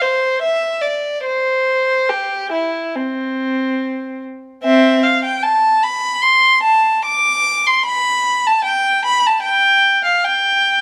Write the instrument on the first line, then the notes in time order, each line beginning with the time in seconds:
violin
0.01 C5
0.42 E5
0.81 D5
1.25 C5
2.09 G4
2.52 E4
2.96 C4
4.64 C4 E5
5.03 F5
5.24 G5
5.43 A5
5.83 B5
6.22 C6
6.63 A5
7.05 D6
7.67 C6
7.85 B5
8.47 A5
8.65 G5
9.05 B5
9.27 A5
9.43 G5
10.05 F5
10.24 G5